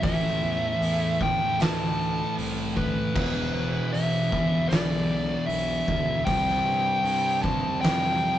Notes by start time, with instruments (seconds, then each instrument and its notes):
0.02 fingered electric bass A1, distorted electric guitar A2 E3 A3, lead electric guitar E5, kick, open hi-hat
0.26 snare
0.42 fingered electric bass E2
0.81 fingered electric bass E2, open hi-hat
1.19 distorted electric guitar A2 E3 A3, lead electric guitar G5, kick
1.59 fingered electric bass D2, distorted electric guitar A2 E3 A3, lead electric guitar A5, snare, open hi-hat
2.37 fingered electric bass C2, open hi-hat
2.77 lead electric guitar B4, kick
3.15 fingered electric bass E1, distorted electric guitar E2 B2 E3, kick, crash
3.93 fingered electric bass A1, lead electric guitar E5, open hi-hat
4.30 distorted electric guitar E2 B2 E3, kick
4.69 fingered electric bass B1, distorted electric guitar E2 B2 E3, lead electric guitar D5, snare, open hi-hat
5.46 fingered electric bass B1, lead electric guitar E5, open hi-hat
5.88 fingered electric bass D2, kick
6.24 fingered electric bass C2, distorted electric guitar C3 G3 C4, lead electric guitar G5, kick, open hi-hat
6.49 snare
6.65 fingered electric bass G2
7.04 fingered electric bass G2, open hi-hat
7.42 distorted electric guitar C3 G3 C4, lead electric guitar A5, kick
7.80 fingered electric bass F2, distorted electric guitar C3 G3 C4, lead electric guitar G5, open hi-hat
7.85 snare